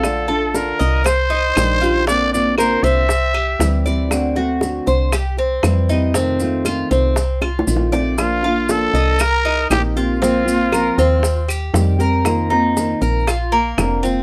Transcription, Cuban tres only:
\new Staff \with { instrumentName = "Cuban tres" } { \time 4/4 \key bes \major \tempo 4 = 118 f''8 a'4 ees''8 c''8 ees'4 f'8 | d'4 bes'8 c'4 g'4 d''8~ | d''8 fis'4 c''8 g'8 c'4 ees'8 | c'4 f'8 c'4 f'4 d''8 |
r8 f'4 ees''8 bes'8 ees'4 f'8 | c'4 bes'8 c'4 g'4 bes'8~ | bes'8 ees'4 bes'8 f'8 bes4 c'8 | }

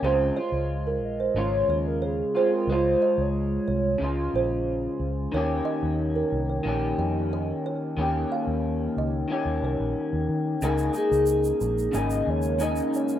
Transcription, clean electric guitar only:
\new Staff \with { instrumentName = "Clean electric guitar" } { \time 4/4 \key ees \mixolydian \tempo 4 = 91 <des aes c' f'>8 <aes f'>4. <des aes f'>4. <aes c' f'>8 | <aes f'>2 <des aes f'>2 | <ees bes des' g'>2 <ees bes des' g'>2 | <ees bes des' g'>2 <ees bes des' g'>2 |
<des bes ees' aes'>8 <bes ees' aes'>4. <des bes ees' aes'>4 <des bes ees' aes'>4 | }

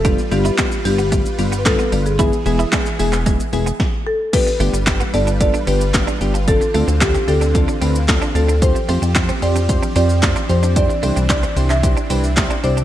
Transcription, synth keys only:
\new Staff \with { instrumentName = "Synth keys" } { \time 4/4 \key g \mixolydian \tempo 4 = 112 <g b d' f'>8 <g b d' f'>8 <g b d' f'>8 <g b d' f'>8 <g b d' f'>8 <g b d' f'>8 <g b d' f'>8 <g b d' f'>8 | <gis b e' gis'>8 <gis b e' gis'>8 <gis b e' gis'>8 <gis b e' gis'>8 <gis b e' gis'>8 <gis b e' gis'>8 r4 | <b d' f' g'>8 <b d' f' g'>8 <b d' f' g'>8 <b d' f' a'>8 <b d' f' a'>8 <b d' f' g'>8 <b d' f' g'>8 <b d' f' g'>8 | <c' d' f' a'>8 <c' d' f' a'>8 <c' d' f' a'>8 <c' d' f' g'>8 <c' d' f' a'>8 <c' d' f' b'>8 <c' d' f' a'>8 <c' d' f' a'>8 |
<c' f' g' c''>8 <c' f' g' c''>8 <c' f' g' c''>8 <c' f' g' c''>8 <c' f' g' c''>8 <c' f' g' c''>8 <c' f' g' c''>8 <c' f' g' c''>8 | <d' e' g' c''>8 <d' e' g' c''>8 <d' e' g' c''>8 <d' e' g' c''>8 <d' e' g' c''>8 <d' e' g' b'>8 <d' e' g' c''>8 <d' e' g' d''>8 | }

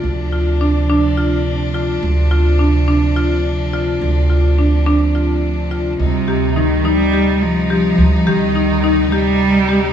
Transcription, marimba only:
\new Staff \with { instrumentName = "Marimba" } { \time 7/8 \key d \phrygian \tempo 4 = 106 r8 f'8 d'8 d'8 f'4 f'8 | r8 f'8 d'8 d'8 f'4 f'8 | r8 f'8 d'8 d'8 f'4 f'8 | r8 g'8 ees'8 ees'8 g'4 g'8 |
r8 g'8 ees'8 ees'8 g'4 g'8 | }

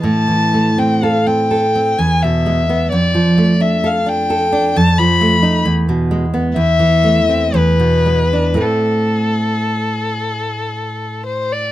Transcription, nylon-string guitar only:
\new Staff \with { instrumentName = "Nylon-string guitar" } { \time 3/4 \key a \minor \tempo 4 = 63 a,16 e16 a16 c'16 a'16 c'16 a'16 c'16 e,16 b,16 gis16 b16 | f,16 f16 a16 d'16 a'16 d'16 a'16 d'16 f,16 f16 a16 ees'16 | e,16 b,16 gis16 b16 e,16 e16 a16 c'16 e,16 b,16 gis16 d'16 | <a, a c'>2. | }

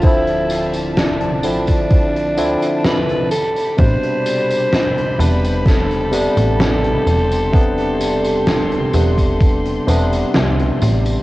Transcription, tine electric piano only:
\new Staff \with { instrumentName = "Tine electric piano" } { \clef bass \time 4/4 \key a \minor \tempo 4 = 64 <d f c' e'>4. <d f c' e'>4 <d f c' e'>4 r8 | <b, c g d'>4. <c g b d'>4 <c g b d'>4. | <c g b d'>4. <c g b d'>4 <c g b d'>4. | }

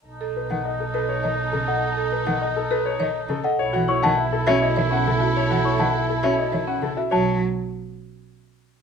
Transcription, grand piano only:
\new Staff \with { instrumentName = "Grand piano" } { \time 3/4 \key b \mixolydian \tempo 4 = 102 r8 b'16 fis''16 dis''16 a'16 b'16 cis''16 dis''16 r16 a'16 dis''16 | r8 b'16 fis''16 dis''16 a'16 b'16 cis''16 dis''16 r16 a'16 dis''16 | cis''16 fis''16 cis''16 fis''16 e''16 a'16 cis''16 dis''16 e''16 fis''16 a'16 e''16 | cis''16 fis''16 cis''16 fis''16 e''16 a'16 cis''16 dis''16 e''16 fis''16 a'16 e''16 |
cis''8 r2 r8 | }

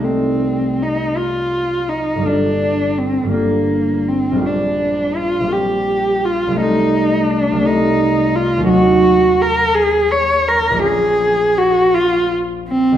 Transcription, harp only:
\new Staff \with { instrumentName = "Harp" } { \time 6/8 \key c \dorian \tempo 4. = 56 <c, a ees' g'>2. | <g,, g bes d' f'>4. <g,, g bes d' f'>4. | <bes,, g bes c' f'>4. <bes,, g bes c' f'>4. | <c, g a c' ees'>4. <c, g a c' ees'>4. |
\key ees \minor <ees, ges bes des' ees'>2. | <bes,, f bes des' f'>2. | }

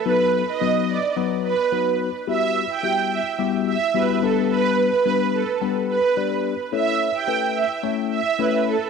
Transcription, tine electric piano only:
\new Staff \with { instrumentName = "Tine electric piano" } { \time 4/4 \key e \dorian \tempo 4 = 108 <fis b dis' fis' b'>8 r8 <fis b dis' fis' b'>8 r8 <fis b dis' fis' b'>8 r8 <fis b dis' fis' b'>8 r8 | <g b e' fis' g'>8 r8 <g b e' fis' g'>8 r8 <g b e' fis' g'>8 r8 <g b e' fis' g'>8 <g b d' g' b'>8~ | <g b d' g' b'>8 r8 <g b d' g' b'>8 r8 <g b d' g' b'>8 r8 <g b d' g' d''>8 r8 | <a cis' e' a' cis''>8 r8 <a cis' e' a' b'>8 r8 <a cis' e' a' cis''>8 r8 <a cis' e' a' cis''>8 r8 | }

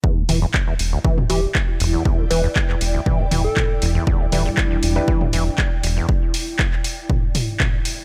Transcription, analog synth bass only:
\new Staff \with { instrumentName = "Analog synth bass" } { \clef bass \time 4/4 \key e \minor \tempo 4 = 119 r8 e,,8 r8 e,,8 r8 e,,8 r8 e,,8 | r8 e,,8 r8 e,,8 r8 e,,8 r8 e,,8 | r8 e,,8 r8 e,,8 r8 e,,8 r8 e,,8 | r1 | }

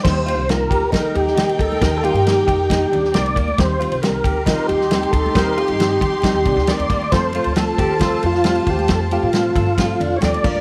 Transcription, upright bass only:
\new Staff \with { instrumentName = "Upright bass" } { \clef bass \time 4/4 \key ees \lydian \tempo 4 = 136 ees,8. c,8. d,4 ees,4 d,8 | ees,8. g,8. f,4 ees,8 c,8 d,8 | ees,8. c,8. d,4 ees,4 d,8 | ees,8. g,8. f,8 r16 ees,16 c,16 d,8 ees,16 ees,8 |
f,8. d,8. ees,4 f,4 ees,8 | f,8. a,8. g,4 f,8 ees,8 f,8 | }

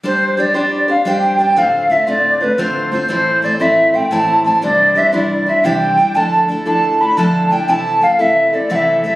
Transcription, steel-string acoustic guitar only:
\new Staff \with { instrumentName = "Steel-string acoustic guitar" } { \time 9/8 \key a \minor \tempo 4. = 118 <g d' g' c''>4 <g d' g' c''>8 <g d' g' c''>4 <d' g' c''>8 <g d' g' c''>4 <g d' g' c''>8 | <a, d a c' f' c''>4 <a c' f' c''>8 <a, d a c' f' c''>4 <a c' f' c''>8 <a, d a c' f' c''>4 <a c' f' c''>8 | <a, e a c' e' c''>4 <a c' e' c''>8 <a, e a c' e' c''>4 <a c' e' c''>8 <a, e a c' e' c''>4 <a c' e' c''>8 | <c e g d' e' c''>4 <g d' e' c''>8 <c e g d' e' c''>4 <g d' e' c''>8 <c e g d' e' c''>4 <g d' e' c''>8 |
<d f a d' e' a'>4 <a d' e' a'>8 <d f a d' e' a'>4 <a d' e' a'>8 <d f a d' e' a'>4 <a d' e' a'>8 | <c e a c' e' a'>4 <a c' e' a'>8 <c e a c' e' a'>4 <a c' e' a'>8 <c e a c' e' a'>4 <a c' e' a'>8 | }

